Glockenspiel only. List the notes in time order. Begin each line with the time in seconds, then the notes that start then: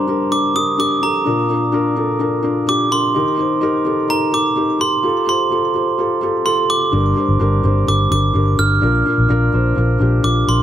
Already playing: A#5
0.32 D6
0.56 D#6
0.80 D6
1.03 A#5
2.69 D6
2.92 C6
4.10 A#5
4.34 D6
4.81 C6
5.29 C6
6.46 C6
6.70 D6
7.88 D6
8.12 D6
8.59 F6
10.24 D6
10.49 C6